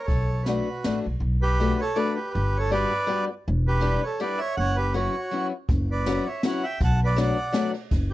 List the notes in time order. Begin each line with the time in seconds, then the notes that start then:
0.04 A4 C#5
0.08 B1, kick, ride
0.43 F#4 B4, snare, ride
0.47 A3 B3 D4 F#4
0.84 A1 A3 B3 D4 F#4, snare, ride
1.06 B1
1.20 B1
1.42 G4 B4
1.60 A3 B3 D4 F#4 A4
1.80 A4 C#5
1.96 A3 B3 D4 F#4 A4 B4 D5
2.14 G4 B4
2.31 G4 B4
2.35 G1
2.57 A4 C#5
2.71 G3 B3 D4 F#4 G4 B4 D5
3.07 G3 B3 D4 F#4 G4
3.48 E1
3.68 G4 B4
3.81 G3 B3 D4 E4 G4
4.03 A4 C#5
4.20 G3 B3 D4 E4 G4 B4 D5
4.38 C#5 E5
4.57 F#1 C#5 F#5
4.76 G4 B4
4.94 F#3 B3 C#4 E4 F#4 C#5
5.31 F#3 B3 C#4 E4 F#4
5.69 F#1, kick, ride
5.91 B4 D5
6.06 F#3 B3 C#4 E4 F#4, snare, ride
6.26 C#5 E5
6.43 F#3 B3 C#4 E4 F#4 C#5, snare, ride
6.48 F#5
6.64 E5 G5
6.81 B1 F#5 A5, kick, ride
7.04 B4 D5
7.16 F#3 A3 B3 D4 F#4 D5, snare, ride
7.22 F#5
7.52 F#3 A3 B3 D4 F#4, snare, ride
7.74 ride
7.91 F#1, kick, ride